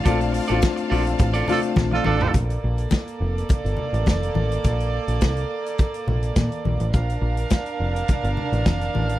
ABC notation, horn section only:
X:1
M:4/4
L:1/16
Q:1/4=104
K:Bb
V:1 name="Horn section"
z8 z2 [DFA] z2 [DFA] [DFA]2 | z16 | z16 | z16 |]